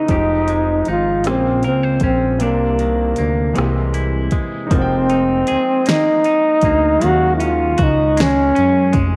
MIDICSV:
0, 0, Header, 1, 6, 480
1, 0, Start_track
1, 0, Tempo, 769231
1, 60, Time_signature, 6, 3, 24, 8
1, 5716, End_track
2, 0, Start_track
2, 0, Title_t, "Trombone"
2, 0, Program_c, 0, 57
2, 0, Note_on_c, 0, 63, 92
2, 555, Note_off_c, 0, 63, 0
2, 561, Note_on_c, 0, 65, 78
2, 798, Note_on_c, 0, 60, 82
2, 808, Note_off_c, 0, 65, 0
2, 1029, Note_off_c, 0, 60, 0
2, 1036, Note_on_c, 0, 60, 72
2, 1251, Note_off_c, 0, 60, 0
2, 1271, Note_on_c, 0, 60, 77
2, 1510, Note_on_c, 0, 58, 73
2, 1519, Note_off_c, 0, 60, 0
2, 2465, Note_off_c, 0, 58, 0
2, 2957, Note_on_c, 0, 60, 87
2, 3678, Note_on_c, 0, 63, 94
2, 3688, Note_off_c, 0, 60, 0
2, 4397, Note_on_c, 0, 66, 99
2, 4407, Note_off_c, 0, 63, 0
2, 4585, Note_off_c, 0, 66, 0
2, 4594, Note_on_c, 0, 64, 66
2, 4648, Note_on_c, 0, 65, 85
2, 4657, Note_off_c, 0, 64, 0
2, 4887, Note_on_c, 0, 63, 87
2, 4897, Note_off_c, 0, 65, 0
2, 5124, Note_on_c, 0, 61, 103
2, 5133, Note_off_c, 0, 63, 0
2, 5652, Note_off_c, 0, 61, 0
2, 5716, End_track
3, 0, Start_track
3, 0, Title_t, "Grand piano"
3, 0, Program_c, 1, 0
3, 0, Control_c, 1, 64, 127
3, 0, Note_on_c, 1, 52, 58
3, 0, Note_on_c, 1, 56, 50
3, 0, Note_on_c, 1, 59, 49
3, 0, Note_on_c, 1, 61, 53
3, 0, Note_on_c, 1, 63, 60
3, 51, Note_on_c, 1, 53, 60
3, 56, Note_off_c, 1, 56, 0
3, 56, Note_on_c, 1, 56, 51
3, 63, Note_on_c, 1, 60, 55
3, 65, Note_off_c, 1, 61, 0
3, 68, Control_c, 1, 64, 0
3, 70, Note_off_c, 1, 63, 0
3, 70, Note_on_c, 1, 63, 55
3, 74, Note_off_c, 1, 52, 0
3, 74, Note_off_c, 1, 59, 0
3, 76, Note_on_c, 1, 67, 65
3, 193, Control_c, 1, 64, 127
3, 766, Note_off_c, 1, 56, 0
3, 768, Note_on_c, 1, 49, 54
3, 775, Note_on_c, 1, 56, 51
3, 776, Note_off_c, 1, 53, 0
3, 781, Note_off_c, 1, 60, 0
3, 781, Note_on_c, 1, 58, 54
3, 785, Note_off_c, 1, 63, 0
3, 786, Note_on_c, 1, 72, 55
3, 787, Control_c, 1, 64, 0
3, 788, Note_off_c, 1, 67, 0
3, 794, Note_on_c, 1, 65, 62
3, 893, Control_c, 1, 64, 127
3, 1490, Note_on_c, 1, 48, 59
3, 1492, Note_off_c, 1, 58, 0
3, 1494, Note_off_c, 1, 49, 0
3, 1494, Note_on_c, 1, 55, 55
3, 1497, Note_off_c, 1, 56, 0
3, 1502, Note_on_c, 1, 58, 57
3, 1503, Note_off_c, 1, 72, 0
3, 1507, Note_off_c, 1, 65, 0
3, 1508, Control_c, 1, 64, 0
3, 1508, Note_on_c, 1, 60, 53
3, 1516, Note_on_c, 1, 62, 69
3, 1636, Control_c, 1, 64, 127
3, 2205, Note_on_c, 1, 52, 66
3, 2210, Note_off_c, 1, 58, 0
3, 2213, Note_on_c, 1, 56, 64
3, 2215, Note_off_c, 1, 48, 0
3, 2216, Note_off_c, 1, 60, 0
3, 2217, Note_off_c, 1, 55, 0
3, 2219, Note_on_c, 1, 58, 62
3, 2226, Control_c, 1, 64, 0
3, 2226, Note_on_c, 1, 60, 58
3, 2228, Note_off_c, 1, 62, 0
3, 2233, Note_on_c, 1, 67, 72
3, 2338, Control_c, 1, 64, 127
3, 2912, Note_on_c, 1, 63, 67
3, 2914, Note_off_c, 1, 56, 0
3, 2923, Note_on_c, 1, 56, 62
3, 2929, Note_off_c, 1, 58, 0
3, 2932, Note_off_c, 1, 52, 0
3, 2938, Note_on_c, 1, 58, 62
3, 2942, Note_off_c, 1, 60, 0
3, 2946, Note_off_c, 1, 67, 0
3, 2947, Control_c, 1, 64, 0
3, 2951, Note_on_c, 1, 60, 60
3, 2964, Note_on_c, 1, 66, 57
3, 2993, Note_off_c, 1, 66, 0
3, 3005, Note_on_c, 1, 79, 76
3, 3046, Control_c, 1, 64, 127
3, 4341, Note_off_c, 1, 63, 0
3, 4347, Note_off_c, 1, 56, 0
3, 4354, Note_off_c, 1, 58, 0
3, 4356, Note_on_c, 1, 54, 64
3, 4360, Note_off_c, 1, 60, 0
3, 4367, Note_on_c, 1, 56, 62
3, 4381, Note_on_c, 1, 58, 62
3, 4387, Note_off_c, 1, 79, 0
3, 4387, Control_c, 1, 64, 0
3, 4393, Note_on_c, 1, 61, 63
3, 4407, Note_on_c, 1, 77, 78
3, 4513, Control_c, 1, 64, 127
3, 5716, Note_off_c, 1, 54, 0
3, 5716, Note_off_c, 1, 56, 0
3, 5716, Note_off_c, 1, 58, 0
3, 5716, Note_off_c, 1, 61, 0
3, 5716, Note_off_c, 1, 77, 0
3, 5716, End_track
4, 0, Start_track
4, 0, Title_t, "Clean electric guitar"
4, 0, Program_c, 2, 27
4, 0, Note_on_c, 2, 52, 52
4, 64, Note_on_c, 2, 53, 69
4, 69, Note_on_c, 2, 67, 60
4, 110, Note_off_c, 2, 52, 0
4, 309, Note_on_c, 2, 56, 50
4, 551, Note_on_c, 2, 63, 55
4, 785, Note_off_c, 2, 56, 0
4, 794, Note_on_c, 2, 58, 66
4, 830, Note_off_c, 2, 53, 0
4, 832, Note_off_c, 2, 67, 0
4, 833, Note_off_c, 2, 63, 0
4, 1026, Note_on_c, 2, 70, 54
4, 1144, Note_off_c, 2, 70, 0
4, 1144, Note_on_c, 2, 72, 49
4, 1269, Note_on_c, 2, 61, 54
4, 1503, Note_on_c, 2, 48, 70
4, 1511, Note_on_c, 2, 62, 59
4, 1550, Note_off_c, 2, 72, 0
4, 1552, Note_off_c, 2, 61, 0
4, 1746, Note_off_c, 2, 58, 0
4, 1748, Note_on_c, 2, 51, 51
4, 1987, Note_on_c, 2, 58, 52
4, 2211, Note_off_c, 2, 48, 0
4, 2218, Note_on_c, 2, 48, 68
4, 2272, Note_off_c, 2, 51, 0
4, 2273, Note_off_c, 2, 62, 0
4, 2460, Note_on_c, 2, 64, 50
4, 2479, Note_off_c, 2, 58, 0
4, 2697, Note_on_c, 2, 56, 54
4, 2935, Note_off_c, 2, 56, 0
4, 2938, Note_on_c, 2, 53, 82
4, 2987, Note_off_c, 2, 48, 0
4, 2988, Note_off_c, 2, 64, 0
4, 3180, Note_on_c, 2, 63, 61
4, 3419, Note_on_c, 2, 68, 64
4, 3660, Note_on_c, 2, 58, 64
4, 3900, Note_off_c, 2, 63, 0
4, 3902, Note_on_c, 2, 63, 61
4, 4145, Note_off_c, 2, 58, 0
4, 4148, Note_on_c, 2, 58, 59
4, 4376, Note_off_c, 2, 53, 0
4, 4379, Note_on_c, 2, 51, 75
4, 4613, Note_off_c, 2, 63, 0
4, 4616, Note_on_c, 2, 61, 62
4, 4852, Note_off_c, 2, 68, 0
4, 4855, Note_on_c, 2, 66, 65
4, 5096, Note_off_c, 2, 58, 0
4, 5098, Note_on_c, 2, 56, 62
4, 5329, Note_off_c, 2, 61, 0
4, 5336, Note_on_c, 2, 61, 59
4, 5563, Note_off_c, 2, 56, 0
4, 5571, Note_on_c, 2, 56, 61
4, 5716, Note_off_c, 2, 51, 0
4, 5716, Note_off_c, 2, 56, 0
4, 5716, Note_off_c, 2, 61, 0
4, 5716, Note_off_c, 2, 66, 0
4, 5716, End_track
5, 0, Start_track
5, 0, Title_t, "Analog synth bass"
5, 0, Program_c, 3, 38
5, 62, Note_on_c, 3, 29, 99
5, 516, Note_off_c, 3, 29, 0
5, 552, Note_on_c, 3, 32, 90
5, 789, Note_on_c, 3, 34, 95
5, 799, Note_off_c, 3, 32, 0
5, 1032, Note_on_c, 3, 37, 72
5, 1041, Note_off_c, 3, 34, 0
5, 1242, Note_off_c, 3, 37, 0
5, 1260, Note_on_c, 3, 34, 86
5, 1512, Note_on_c, 3, 36, 91
5, 1521, Note_off_c, 3, 34, 0
5, 1961, Note_off_c, 3, 36, 0
5, 1992, Note_on_c, 3, 38, 83
5, 2203, Note_off_c, 3, 38, 0
5, 2232, Note_on_c, 3, 36, 99
5, 2681, Note_off_c, 3, 36, 0
5, 2944, Note_on_c, 3, 29, 102
5, 3397, Note_off_c, 3, 29, 0
5, 3436, Note_on_c, 3, 38, 50
5, 3480, Note_off_c, 3, 38, 0
5, 4142, Note_on_c, 3, 38, 101
5, 4357, Note_off_c, 3, 38, 0
5, 4391, Note_on_c, 3, 39, 101
5, 4841, Note_off_c, 3, 39, 0
5, 4868, Note_on_c, 3, 37, 93
5, 5319, Note_off_c, 3, 37, 0
5, 5356, Note_on_c, 3, 42, 92
5, 5584, Note_on_c, 3, 29, 101
5, 5593, Note_off_c, 3, 42, 0
5, 5716, Note_off_c, 3, 29, 0
5, 5716, End_track
6, 0, Start_track
6, 0, Title_t, "Drums"
6, 53, Note_on_c, 9, 42, 62
6, 56, Note_on_c, 9, 36, 102
6, 115, Note_off_c, 9, 42, 0
6, 118, Note_off_c, 9, 36, 0
6, 298, Note_on_c, 9, 42, 42
6, 360, Note_off_c, 9, 42, 0
6, 532, Note_on_c, 9, 42, 44
6, 594, Note_off_c, 9, 42, 0
6, 774, Note_on_c, 9, 42, 56
6, 792, Note_on_c, 9, 37, 97
6, 837, Note_off_c, 9, 42, 0
6, 854, Note_off_c, 9, 37, 0
6, 1015, Note_on_c, 9, 42, 43
6, 1078, Note_off_c, 9, 42, 0
6, 1247, Note_on_c, 9, 42, 46
6, 1254, Note_on_c, 9, 36, 79
6, 1309, Note_off_c, 9, 42, 0
6, 1316, Note_off_c, 9, 36, 0
6, 1496, Note_on_c, 9, 42, 60
6, 1559, Note_off_c, 9, 42, 0
6, 1741, Note_on_c, 9, 42, 42
6, 1803, Note_off_c, 9, 42, 0
6, 1972, Note_on_c, 9, 42, 44
6, 2034, Note_off_c, 9, 42, 0
6, 2219, Note_on_c, 9, 42, 53
6, 2236, Note_on_c, 9, 37, 98
6, 2281, Note_off_c, 9, 42, 0
6, 2299, Note_off_c, 9, 37, 0
6, 2458, Note_on_c, 9, 42, 43
6, 2521, Note_off_c, 9, 42, 0
6, 2689, Note_on_c, 9, 42, 43
6, 2696, Note_on_c, 9, 36, 80
6, 2751, Note_off_c, 9, 42, 0
6, 2758, Note_off_c, 9, 36, 0
6, 2939, Note_on_c, 9, 36, 117
6, 2939, Note_on_c, 9, 42, 67
6, 3001, Note_off_c, 9, 36, 0
6, 3001, Note_off_c, 9, 42, 0
6, 3180, Note_on_c, 9, 42, 50
6, 3242, Note_off_c, 9, 42, 0
6, 3413, Note_on_c, 9, 42, 51
6, 3476, Note_off_c, 9, 42, 0
6, 3656, Note_on_c, 9, 42, 60
6, 3673, Note_on_c, 9, 38, 106
6, 3718, Note_off_c, 9, 42, 0
6, 3736, Note_off_c, 9, 38, 0
6, 3896, Note_on_c, 9, 42, 48
6, 3958, Note_off_c, 9, 42, 0
6, 4128, Note_on_c, 9, 42, 49
6, 4136, Note_on_c, 9, 36, 89
6, 4190, Note_off_c, 9, 42, 0
6, 4198, Note_off_c, 9, 36, 0
6, 4377, Note_on_c, 9, 42, 68
6, 4440, Note_off_c, 9, 42, 0
6, 4620, Note_on_c, 9, 42, 51
6, 4682, Note_off_c, 9, 42, 0
6, 4853, Note_on_c, 9, 42, 55
6, 4861, Note_on_c, 9, 36, 101
6, 4916, Note_off_c, 9, 42, 0
6, 4923, Note_off_c, 9, 36, 0
6, 5100, Note_on_c, 9, 42, 63
6, 5118, Note_on_c, 9, 38, 117
6, 5163, Note_off_c, 9, 42, 0
6, 5181, Note_off_c, 9, 38, 0
6, 5343, Note_on_c, 9, 42, 48
6, 5406, Note_off_c, 9, 42, 0
6, 5573, Note_on_c, 9, 42, 46
6, 5578, Note_on_c, 9, 36, 90
6, 5636, Note_off_c, 9, 42, 0
6, 5640, Note_off_c, 9, 36, 0
6, 5716, End_track
0, 0, End_of_file